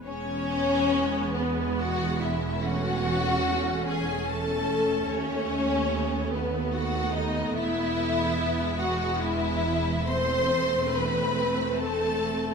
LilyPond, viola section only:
\new Staff \with { instrumentName = "Viola section" } { \time 3/4 \key e \major \tempo 4 = 73 << { b2. | cis'2.~ | cis'4 b2~ | b2. |
c'2. | } \\ { gis2. | a2.~ | a2.~ | a4 gis2 |
a2. | } >> }